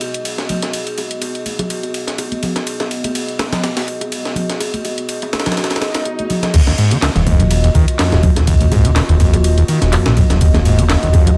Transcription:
Already playing: B3 F#4 G#4 D#5
0.01 ride, high bongo
0.14 closed hi-hat
0.25 closed hi-hat, ride
0.38 snare, closed hi-hat, high bongo
0.49 ride, high conga, low conga
0.62 snare, closed hi-hat, high bongo
0.73 closed hi-hat, ride
0.87 closed hi-hat, ride
0.98 ride, high bongo
1.11 closed hi-hat
1.21 closed hi-hat, ride, high bongo
1.35 closed hi-hat
1.46 ride, high conga
1.59 closed hi-hat, high bongo, low conga
1.70 closed hi-hat, ride
1.83 closed hi-hat, high bongo
1.94 ride
2.07 snare, closed hi-hat
2.18 closed hi-hat, ride, high bongo
2.32 closed hi-hat, high conga
2.43 ride, high bongo, low conga
2.56 snare, closed hi-hat
2.67 closed hi-hat, ride
2.80 snare, closed hi-hat, high bongo
2.91 ride
3.04 closed hi-hat, ride, high bongo, high conga
3.15 closed hi-hat, ride
3.28 closed hi-hat
3.39 snare, ride, high bongo, high conga
3.52 snare, closed hi-hat, ride, low conga
3.63 snare, closed hi-hat, ride, high bongo
3.77 snare, closed hi-hat, ride
3.88 ride
4.01 closed hi-hat, high bongo
4.12 closed hi-hat, ride
4.25 snare, closed hi-hat, high bongo
4.35 ride, high conga, low conga
4.50 snare, closed hi-hat
4.60 closed hi-hat, ride, high bongo
4.74 closed hi-hat, ride, high conga
4.85 ride, high bongo
4.98 closed hi-hat
5.09 closed hi-hat, ride
5.22 closed hi-hat, high bongo
5.33 snare, ride, high conga
5.40 snare, ride
5.46 snare, closed hi-hat, ride, high bongo, low conga
5.52 snare, ride
5.57 snare, closed hi-hat, ride, swell
5.64 snare, ride
5.70 snare, closed hi-hat, ride
5.76 snare, ride
5.81 snare, ride, high bongo
5.94 snare, closed hi-hat, ride
6.05 closed hi-hat, high bongo
6.19 closed hi-hat, high conga
6.30 ride, low conga
6.42 snare, closed hi-hat, high bongo, low conga
6.54 D#2 A#3 F4 F#4 D#5, kick, closed hi-hat, crash, ride, high bongo
6.67 D#2, snare, closed hi-hat, high conga
6.78 G#2, ride
6.91 D#3, closed hi-hat, ride, high bongo, high conga
7.02 C#2, snare, clap, closed hi-hat, ride
7.15 D#1 D#2, closed hi-hat, high bongo
7.26 F2, kick, ride, high conga
7.40 G#2, closed hi-hat, low conga
7.51 closed hi-hat, ride, high bongo
7.64 D#2, closed hi-hat
7.74 D#1 D#3, kick, ride, high bongo
7.88 closed hi-hat
7.99 F2, snare, clap, closed hi-hat, ride
8.12 D#1 A#2, snare, closed hi-hat, high bongo
8.23 F2, kick, ride, high conga, low conga
8.36 D#1, snare, closed hi-hat, high bongo
8.47 D#2, kick, closed hi-hat, ride
8.60 D#2, closed hi-hat, ride, high conga
8.72 G#2, kick, ride, high bongo
8.85 D#3, closed hi-hat
8.96 C#2, snare, clap, closed hi-hat, ride, high bongo
9.09 D#1 D#2, closed hi-hat
9.20 F2, kick, ride, high conga
9.33 G#2, closed hi-hat, high bongo, low conga
9.44 closed hi-hat, ride
9.57 D#2, closed hi-hat, high bongo
9.68 D#3, ride
9.82 D#1, snare, closed hi-hat
9.92 F2, clap, closed hi-hat, ride, high bongo
10.06 A#1 A#2, snare, closed hi-hat, high conga
10.17 F2, kick, ride, high bongo, low conga
10.30 D#1, snare, closed hi-hat, low conga
10.41 D#2, kick, closed hi-hat, ride
10.54 D#2, snare, closed hi-hat, high bongo, high conga
10.65 G#2, ride
10.78 D#3, closed hi-hat, ride, high bongo, high conga
10.89 C#2, snare, clap, closed hi-hat, ride
11.03 D#1 D#2, closed hi-hat
11.13 F2, kick, ride, high bongo, high conga
11.26 G#2, closed hi-hat, low conga

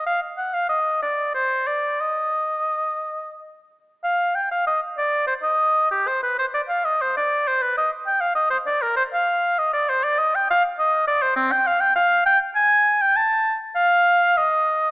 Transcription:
0.06 F5
0.37 F#5
0.53 F5
0.69 D#5
1.02 D5
1.34 C5
1.67 D5
2.01 D#5
4.04 F5
4.35 G5
4.51 F5
4.67 D#5
4.98 D5
5.27 C5
5.42 D#5
5.91 G4
6.07 C5
6.23 B4
6.38 C5
6.54 D5
6.69 F5
6.84 D#5
7.02 C5
7.17 D5
7.48 C5
7.62 B4
7.78 D#5
8.06 G5
8.21 F5
8.35 D#5
8.50 C5
8.66 D5
8.82 A#4
8.96 C5
9.13 F5
9.58 D#5
9.73 D5
9.89 C5
10.04 D5
10.18 D#5
10.35 G5
10.50 F5
10.79 D#5
11.07 D5
11.22 C5
11.36 C4
11.52 G5
11.66 F5
11.80 G5
11.95 F5
12.26 G5
12.55 G#5
13.01 G5
13.16 A5
13.75 F5
14.37 D#5

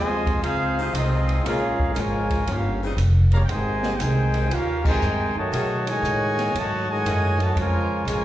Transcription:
Already playing: D#2 C3 F3 G#3 F4 C5 D#5 G#5
0.27 kick, ride
0.41 C#2 G#3 C4 D#4 F4 G#4 C5 F5, ride
0.78 C3 F3 C4 D#4
0.91 C2 G#3 C4 D#4 F4 G#4 D#5, hi-hat pedal, ride
1.29 ride
1.43 A#1 C#3 G#3 A#3 C#4 F4 G#4 A#4 F5, ride
1.79 kick
1.94 G#1 C#3 F3 G#3 A#3 F4, hi-hat pedal, ride
1.98 F4 A#4 C#5 G#5
2.30 kick, ride
2.46 G1 A#3 C#4 F4 F5, ride
2.50 C#4 G4 A#4
2.82 C#3 G3 C4 D#4
2.97 F1, hi-hat pedal, ride
3.32 C#3 G3 A#3 G4 C#5 F5 A#5, ride
3.44 G5
3.48 G#1 C3 D#3 G#3 D#4 C5 G5 G#5, ride
3.83 D#3 G#3 C4 G4, snare
3.96 G5
4.00 C2 C3 D#3 G#3 D#4 C5 G5 G#5, hi-hat pedal, ride
4.33 D#3 G#3 C4 G4, ride
4.50 D#2 C#4 F4 G4 A#4 F5, ride
4.84 C3 D#3 G#3 D#4 C5 G5 G#5, kick, crash
5.02 G2, hi-hat pedal
5.35 D#3 F#3 A3 F#4 C#5 D#5 A5, muted upright bass stroke
5.52 B2 D#3 A3 C#4 G#4, ride
5.87 A2 D#3 G#3 F#4 C#5 D#5 G#5, ride
6.02 A2, hi-hat pedal
6.39 snare, ride
6.54 G#2 D#3 F#3 A3, ride
6.58 F#4 C#5 D#5 A5
6.88 A2 D#3 G#3 F#4 C#5 D#5 G#5
7.05 F#2 D#3 A3 C#4 D#4, hi-hat pedal, ride
7.38 D#3 F#3 A3 C#5 A5, ride
7.42 F#4 D#5
7.56 F2 C#3 F3 G#3 F4 A#4 C#5 G#5, ride
8.05 A#1 C#3 F3 G#3, hi-hat pedal, ride
8.10 F4 A#4 C#5 G#5

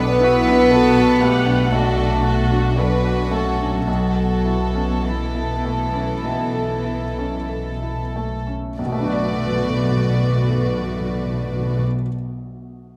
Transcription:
Already playing: B1 B2 B3 D4 B4
0.00 A4
0.23 E4 F#4
0.48 D4
0.71 F#4 A4
0.97 F#4
1.21 A3 G4 F#5
1.45 D4
1.72 B1 A3 D4 F#4 A4
1.97 A4
2.24 F#4
2.51 D4
2.76 F#3 D4 F#4 A4 B4
3.05 F#4
3.31 A3 C#4 A4
3.60 D4
3.87 B1 F#3 B3 F#4 A4
4.16 A4
4.45 E4
4.75 C#4
5.04 E3 E4 A4
5.35 E4
5.65 A3
5.93 C#4
6.24 B1
6.54 A4
6.84 E4
7.19 C#4
7.49 A4
7.82 E4
8.16 A3
8.47 C#4
8.78 B1 B2 A3 F#4 B4 D5
8.85 B2
8.92 B2 A3
8.99 B2 D4
9.05 B2 F#4
9.13 B2 D5
9.19 B2
9.26 B2
9.32 B2
9.39 B2
9.46 B2
9.52 B2
9.58 B2
9.64 B2
9.70 B2
9.77 B2
9.83 B2
9.90 B2
9.96 B2
10.03 B2
10.10 B2
10.16 B2
10.23 B2
10.30 B2
10.36 B2
10.42 B2
10.49 B2
10.56 B2
10.62 B2
10.68 B2
10.75 B2
10.81 B2
10.88 B2
10.94 B2
11.00 B2
11.07 B2
11.13 B2
11.20 B2
11.26 B2
11.33 B2
11.40 B2
11.46 B2
11.52 B2
11.59 B2
11.66 B2
11.72 B2
11.79 B2

